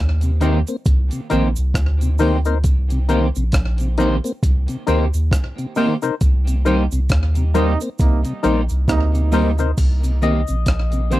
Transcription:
Already playing: sub bass D#2
0.21 tonewheel organ C3, closed hi-hat, cabasa
0.41 clean electric guitar D#3 A#3 C4 G4, tonewheel organ D#3 A#3 C4, synth stab D#4 A#4 C5, closed hi-hat, cabasa
0.67 tonewheel organ A#3 C4, closed hi-hat, cabasa
0.85 sub bass C2, kick, closed hi-hat, cabasa
1.11 tonewheel organ C3, closed hi-hat, cabasa
1.30 sub bass A#1, clean electric guitar D#3 A#3 C4 G4, tonewheel organ D#3 A#3 C4, synth stab D#4 A#4 C5, closed hi-hat, cabasa
1.56 sub bass C2, closed hi-hat, cabasa
1.74 sub bass D2, kick, cross-stick, closed hi-hat, cabasa
2.01 tonewheel organ C3, closed hi-hat, cabasa
2.18 clean electric guitar D#3 A#3 C4 G4, tonewheel organ D#3 A#3 C4, synth stab D#4 A#4 C5, open hi-hat, cabasa
2.45 tonewheel organ A#3 C4, synth stab D#4 A#4 C5, closed hi-hat, cabasa
2.64 sub bass C2, kick, closed hi-hat, cabasa
2.90 tonewheel organ C3, closed hi-hat, cabasa
3.09 clean electric guitar D#3 A#3 C4 G4, tonewheel organ D#3 A#3 C4, synth stab D#4 A#4 C5, closed hi-hat, cabasa
3.35 sub bass A#1, tonewheel organ C3, cabasa
3.52 sub bass A#1, kick, cross-stick, closed hi-hat, cabasa
3.78 tonewheel organ C3, closed hi-hat, cabasa
3.98 tonewheel organ D#3 A#3 C4, clean electric guitar D#3 A#3 C4 G4, synth stab D#4 A#4 C5, closed hi-hat, cabasa
4.24 tonewheel organ A#3 C4, closed hi-hat, cabasa
4.43 sub bass C2, kick, closed hi-hat, cabasa
4.68 tonewheel organ C3, closed hi-hat, cabasa
4.87 sub bass D2, tonewheel organ D#3 A#3 C4, clean electric guitar D#3 A#3 C4 G4, synth stab D#4 A#4 C5, closed hi-hat, cabasa
5.14 sub bass D#2, closed hi-hat, cabasa
5.31 kick, cross-stick, closed hi-hat, cabasa
5.58 tonewheel organ C3, closed hi-hat, cabasa
5.75 clean electric guitar D#3 A#3 C4 G4, tonewheel organ D#3 A#3 C4, synth stab D#4 A#4 C5, open hi-hat, cabasa
6.02 tonewheel organ C3, synth stab D#4 A#4 C5, muted clean electric guitar stroke, closed hi-hat, cabasa
6.21 sub bass C2, kick, closed hi-hat, cabasa
6.47 tonewheel organ C3, closed hi-hat, cabasa
6.65 tonewheel organ D#3 A#3 C4, clean electric guitar G3 A#3 D#4 G4, synth stab D#4 A#4 C5, closed hi-hat, cabasa
6.92 sub bass C2, tonewheel organ C3, closed hi-hat, cabasa
7.09 sub bass D#2, kick, cross-stick, closed hi-hat, cabasa
7.35 tonewheel organ C3, closed hi-hat, cabasa
7.54 trombone section C3 A#3 D#4, tonewheel organ D#3 A#3 C4, clean electric guitar G3 A#3 D#4 G4, synth stab D#4 A#4 C5, closed hi-hat, cabasa
7.80 tonewheel organ A#3 C4, closed hi-hat, cabasa
7.99 sub bass C2, trombone section C3 A#3 D#4, kick, closed hi-hat, cabasa
8.25 tonewheel organ C3, closed hi-hat, cabasa
8.43 sub bass A#1, tonewheel organ D#3 A#3 C4, clean electric guitar G3 A#3 D#4 G4, synth stab D#4 A#4 C5, closed hi-hat, cabasa
8.69 sub bass C2, closed hi-hat, cabasa
8.88 sub bass D2, trombone section C3 A#3 D#4, kick, cross-stick, closed hi-hat, cabasa
9.14 tonewheel organ C3, closed hi-hat, cabasa
9.32 tonewheel organ D#3 A#3 C4, clean electric guitar G3 A#3 D#4 G4, synth stab D#4 A#4 C5, open hi-hat, cabasa
9.58 tonewheel organ C3, synth stab D#4 A#4 C5, muted clean electric guitar stroke, closed hi-hat, cabasa
9.77 sub bass C2, kick, closed hi-hat, crash, cabasa
10.04 tonewheel organ C3, closed hi-hat, cabasa
10.22 clean electric guitar D#3 A#3 C4 G4, tonewheel organ D#3 A#3 C4, synth stab D#5, closed hi-hat, cabasa
10.48 sub bass A#1, tonewheel organ C3, cabasa
10.66 sub bass A#1, kick, cross-stick, closed hi-hat, cabasa
10.92 tonewheel organ C3, closed hi-hat, cabasa
11.10 tonewheel organ D#3 A#3 C4, clean electric guitar D#3 A#3 C4 G4, synth stab C5, closed hi-hat, cabasa

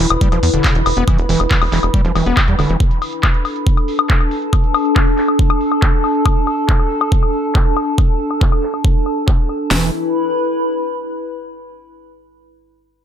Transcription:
Already playing: ambient pad E4 B4 B5
0.10 analog synth bass E1, high woodblock
0.21 acid bass G3, kick, closed hi-hat
0.32 analog synth bass E1, acid bass F3, closed hi-hat, high woodblock
0.43 analog synth bass E2, open hi-hat
0.54 analog synth bass E1, acid bass D3, closed hi-hat
0.64 kick, clap, closed hi-hat, high woodblock
0.75 analog synth bass E1, acid bass E3, closed hi-hat
0.86 analog synth bass E1, open hi-hat, high woodblock
0.97 analog synth bass E1, acid bass B3, closed hi-hat
1.08 acid bass E3, kick, closed hi-hat, high woodblock
1.18 analog synth bass E1, closed hi-hat
1.29 analog synth bass E1, acid bass E3, open hi-hat
1.40 analog synth bass E1, closed hi-hat, high woodblock
1.51 acid bass D3, kick, clap, closed hi-hat
1.62 analog synth bass E1, open hi-hat, high woodblock
1.72 analog synth bass E1, acid bass E3, clap, open hi-hat
1.83 analog synth bass E1, closed hi-hat, high woodblock
1.94 acid bass G3, kick, closed hi-hat
2.05 analog synth bass E1, acid bass F3, closed hi-hat
2.15 analog synth bass E1, acid bass E3, open hi-hat, high woodblock
2.26 analog synth bass E1, acid bass B3, closed hi-hat
2.37 kick, clap, closed hi-hat, high woodblock
2.48 analog synth bass E2, acid bass G3, closed hi-hat
2.59 analog synth bass E1, acid bass D3, open hi-hat, high woodblock
2.69 analog synth bass E1, acid bass E3, closed hi-hat
2.80 ambient pad D4, kick, closed hi-hat
2.91 closed hi-hat
3.02 open hi-hat, high woodblock
3.13 ambient pad A4, closed hi-hat
3.23 kick, clap, closed hi-hat, high woodblock
3.34 closed hi-hat
3.45 open hi-hat, high woodblock
3.56 closed hi-hat
3.67 kick, closed hi-hat
3.76 ambient pad A5, closed hi-hat, high woodblock
3.88 open hi-hat
3.99 closed hi-hat, high woodblock
4.10 kick, clap
4.21 closed hi-hat, high woodblock
4.31 open hi-hat
4.42 closed hi-hat
4.53 kick, high woodblock
4.64 closed hi-hat
4.74 open hi-hat, high woodblock
4.85 closed hi-hat
4.96 kick, clap, high woodblock
5.07 open hi-hat
5.18 clap, open hi-hat
5.28 closed hi-hat, high woodblock
5.39 kick
5.50 closed hi-hat, high woodblock
5.61 open hi-hat
5.72 closed hi-hat, high woodblock
5.82 kick, clap
6.04 open hi-hat, high woodblock
6.15 closed hi-hat
6.26 kick, closed hi-hat, high woodblock
6.36 closed hi-hat
6.47 open hi-hat, high woodblock
6.58 closed hi-hat
6.69 kick, clap
6.80 high woodblock
6.90 open hi-hat
7.01 closed hi-hat, high woodblock
7.12 kick
7.23 closed hi-hat, high woodblock
7.33 open hi-hat
7.44 closed hi-hat
7.55 kick, clap, high woodblock
7.77 open hi-hat, high woodblock
7.87 closed hi-hat
7.98 kick, high woodblock
8.20 open hi-hat
8.31 closed hi-hat, high woodblock
8.41 kick, clap
8.52 high woodblock
8.63 clap, open hi-hat
8.74 closed hi-hat, high woodblock
8.85 kick
9.06 open hi-hat, high woodblock
9.17 closed hi-hat
9.28 kick, clap, high woodblock
9.49 open hi-hat, high woodblock
9.60 closed hi-hat
9.71 analog synth bass E1, acid bass E3, ambient pad E4, snare, open hi-hat
9.77 ambient pad B4
9.84 ambient pad B5

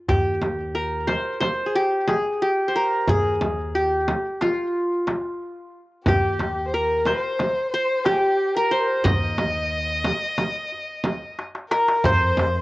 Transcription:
0.08 upright bass D#2, qanun G4, frame drum, darbuka dum
0.42 darbuka tek, frame drum
0.75 qanun A#4
1.07 qanun C5, darbuka tek, frame drum
1.40 qanun C5, darbuka tek, frame drum
1.66 qanun G#4
1.75 qanun G4
2.08 qanun G#4, darbuka tek, frame drum
2.42 qanun G4
2.68 qanun C5
2.76 qanun A#4
3.07 upright bass D#2, qanun G#4, frame drum, darbuka dum
3.41 darbuka tek, frame drum
3.75 qanun G4
4.08 darbuka tek, frame drum
4.41 qanun F4, darbuka tek, frame drum
5.07 darbuka tek, frame drum
6.06 upright bass D#2, violin G4, qanun G4, frame drum, darbuka dum
6.39 darbuka tek, frame drum
6.67 violin C5
6.74 qanun A#4, violin A#4
7.06 violin C5, qanun C5, darbuka tek, frame drum
7.39 darbuka tek, frame drum
7.72 violin C5, qanun C5
8.04 violin G4, qanun G4, darbuka tek, frame drum
8.11 violin G#4
8.19 violin G4
8.55 violin A#4, qanun A#4
8.71 qanun C5, violin C5
8.80 violin A#4
8.87 violin C5
9.04 upright bass D#2, qanun D#5, violin D#5, frame drum, darbuka dum
9.38 darbuka tek, frame drum
10.04 darbuka tek, frame drum
10.38 darbuka tek, frame drum
10.72 darbuka ka
11.04 darbuka tek, frame drum
11.22 darbuka ka
11.39 darbuka tek
11.55 darbuka ka
11.70 violin A#4, qanun A#4, darbuka tek
11.88 darbuka ka
12.03 upright bass F2, violin C5, qanun C5, frame drum, darbuka dum
12.37 darbuka tek, frame drum

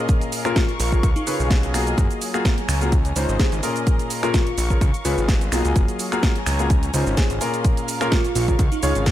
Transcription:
Already playing: grand piano A#2 C#4 F4 G#4 A#4, string section C#4 G#4 D#5 F5
0.09 string section A#4, kick, closed hi-hat, shaker
0.21 closed hi-hat, shaker
0.32 open hi-hat, shaker
0.45 grand piano A#2 C#4 F4 G#4 A#4, fm electric piano F4, finger snap, closed hi-hat, shaker
0.52 string section C#6
0.56 kick, snare, closed hi-hat, shaker
0.69 closed hi-hat
0.80 analog synth bass A#1, fm electric piano F4, open hi-hat, shaker
0.92 grand piano C#3 C#4 F4 G#4 A#4, kick, shaker
1.03 analog synth bass C#2, string section C#4, kick, closed hi-hat, shaker
1.12 string section G#4
1.16 fm electric piano D#4, closed hi-hat, shaker
1.27 grand piano C#3 C#4 F4 G#4 B4, fm electric piano D#4, open hi-hat, shaker
1.40 analog synth bass B1, shaker
1.46 string section D#5
1.51 kick, snare, closed hi-hat, shaker
1.63 closed hi-hat, shaker
1.74 grand piano A#3 F4 F#4 G#4, finger snap, open hi-hat, shaker
1.87 closed hi-hat, shaker
1.98 analog synth bass F#1, string section F#3, kick, closed hi-hat, shaker
2.11 closed hi-hat, shaker
2.19 string section C#5, open hi-hat, shaker
2.30 grand piano A#3 F4 F#4 G#4, string section A#5
2.34 finger snap, shaker
2.41 string section G#5
2.45 kick, snare, closed hi-hat, shaker
2.58 closed hi-hat
2.69 analog synth bass C#2, finger snap, open hi-hat, shaker
2.81 grand piano A#3 F4 F#4 G#4, closed hi-hat, shaker
2.92 string section C#4, kick, closed hi-hat, shaker
3.05 string section G#4, closed hi-hat, shaker
3.14 analog synth bass C#2, grand piano C#3 C#4 D#4 F4 C5, string section F5, open hi-hat, shaker
3.26 analog synth bass G#1, string section D#5, shaker
3.40 fm electric piano G#4, kick, snare, closed hi-hat, shaker
3.52 analog synth bass G#1, closed hi-hat, shaker
3.63 grand piano A#2 C#4 F4 G#4 A#4, open hi-hat, shaker
3.76 closed hi-hat, shaker
3.87 string section A#4, kick, closed hi-hat, shaker
3.99 closed hi-hat, shaker
4.10 open hi-hat, shaker
4.23 grand piano A#2 C#4 F4 G#4 A#4, fm electric piano F4, finger snap, closed hi-hat, shaker
4.30 string section C#6
4.34 kick, snare, closed hi-hat, shaker
4.47 closed hi-hat
4.58 analog synth bass A#1, open hi-hat, shaker
4.70 grand piano C#3 C#4 F4 G#4 A#4, kick, closed hi-hat, shaker
4.81 analog synth bass C#2, string section C#4, kick, closed hi-hat, shaker
4.94 closed hi-hat, shaker
5.05 analog synth bass C#2, grand piano C#3 C#4 F4 G#4 B4, fm electric piano F4, open hi-hat, shaker
5.18 analog synth bass G#1, string section G#4, shaker
5.24 string section D#5
5.29 kick, snare, closed hi-hat, shaker
5.41 closed hi-hat, shaker
5.52 analog synth bass B1, grand piano A#3 F4 F#4 G#4, fm electric piano F4, finger snap, open hi-hat, shaker
5.65 analog synth bass C#2, closed hi-hat, shaker
5.76 analog synth bass F#1, string section F#3, kick, closed hi-hat, shaker
5.83 string section C#5
5.88 closed hi-hat, shaker
5.99 open hi-hat, shaker
6.12 grand piano A#3 F4 F#4 G#4, finger snap, closed hi-hat, shaker
6.18 string section G#5 A#5
6.23 kick, snare, closed hi-hat, shaker
6.36 closed hi-hat
6.46 analog synth bass C#2, finger snap, open hi-hat, shaker
6.59 grand piano A#3 F4 F#4 G#4, closed hi-hat, shaker
6.70 string section C#4, kick, closed hi-hat, shaker
6.83 closed hi-hat, shaker
6.94 analog synth bass C#2, grand piano C#3 C#4 D#4 F4 C5, string section D#5, open hi-hat, shaker
7.07 analog synth bass G#1, shaker
7.13 string section G#4 F5
7.17 fm electric piano G#4, kick, snare, closed hi-hat, shaker
7.30 analog synth bass G#1, closed hi-hat, shaker
7.41 grand piano A#2 C#4 F4 G#4 A#4, open hi-hat, shaker
7.54 closed hi-hat, shaker
7.65 string section A#4, kick, closed hi-hat, shaker
7.77 closed hi-hat, shaker
7.88 open hi-hat, shaker
8.01 grand piano A#2 C#4 F4 G#4 A#4, fm electric piano F4, finger snap, closed hi-hat, shaker
8.08 string section C#6, closed hi-hat
8.12 kick, snare, shaker
8.25 closed hi-hat, shaker
8.35 analog synth bass A#1, fm electric piano F4, open hi-hat, shaker
8.48 grand piano C#3 C#4 F4 G#4 A#4, kick, shaker
8.59 analog synth bass C#2, string section C#4, kick, closed hi-hat, shaker
8.72 fm electric piano D#4, closed hi-hat, shaker
8.83 analog synth bass C#2, grand piano C#3 C#4 F4 G#4 C#5, fm electric piano D#4, open hi-hat, shaker
8.95 analog synth bass G#1, closed hi-hat, shaker
9.01 string section G#4 D#5
9.06 kick, snare, closed hi-hat, shaker

